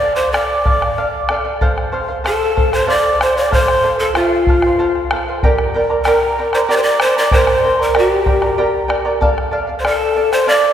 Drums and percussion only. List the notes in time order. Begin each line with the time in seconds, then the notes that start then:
0.03 bombo rim
0.34 bombo rim
0.50 bombo rim
0.66 bombo rim, bombo low
0.82 bombo rim
1.29 bombo rim
1.45 bombo rim
1.61 bombo low
1.78 bombo rim
2.26 bombo rim
2.42 bombo rim
2.57 bombo low
2.73 bombo rim
3.06 bombo rim
3.21 bombo rim
3.53 bombo low
3.68 bombo rim
4.15 bombo rim
4.32 bombo rim
4.47 bombo low
4.62 bombo rim
4.95 bombo rim
5.11 bombo rim
5.43 bombo low
5.58 bombo rim
6.05 bombo rim
6.21 bombo rim
6.53 bombo rim
6.84 bombo rim
7.00 bombo rim
7.31 bombo low
7.47 bombo rim
7.80 bombo rim
7.95 bombo rim
8.26 bombo low
8.42 bombo rim
8.90 bombo rim
9.22 bombo low
9.38 bombo rim
9.85 bombo rim
10.01 bombo rim
10.33 bombo rim
10.64 bombo rim